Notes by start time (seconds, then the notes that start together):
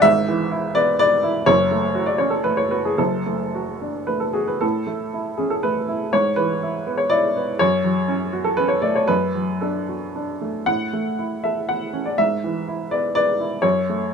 0.02 G#1 G#2 E5
0.28 E3
0.51 E4
0.75 B3 D5
0.99 B4 D5
1.23 E4
1.46 F#1 F#2 C#5
1.71 A3
1.95 F#4
2.06 D5
2.18 C#4 C#5
2.30 A4
2.44 A3 B4
2.57 C#5
2.71 F#4 B4
2.85 G#4
2.98 F#1 F#2 A4
3.26 A3
3.55 F#4
3.81 D4
4.07 A3 B4
4.20 A4
4.33 F#4 G#4
4.48 B4
4.61 A2 A4
4.87 A3
5.14 E4
5.37 C#4 G#4
5.50 A4
5.63 A3 B4
5.88 E4
6.13 G#2 C#5
6.36 E3 B4
6.63 E4
6.87 B3
6.98 C#5
7.10 E4 D5
7.36 B3
7.59 F#2 C#5
7.84 F#3
8.08 C#4
8.33 F#4
8.44 A4
8.57 C#4 B4
8.68 C#5
8.82 A3 D5
8.95 C#5
9.08 F#2 B4
9.35 F#3
9.61 D4 A4
9.89 F#4
10.16 D4
10.41 A3
10.66 A2 F#5
10.93 A3
11.19 E4
11.44 A4 E5
11.69 E4 F#5
11.93 C#4
12.05 D5
12.18 G#2 E5
12.44 E3
12.68 E4
12.91 B3 D5
13.15 B4 D5
13.40 E4
13.62 F#2 C#5
13.89 A3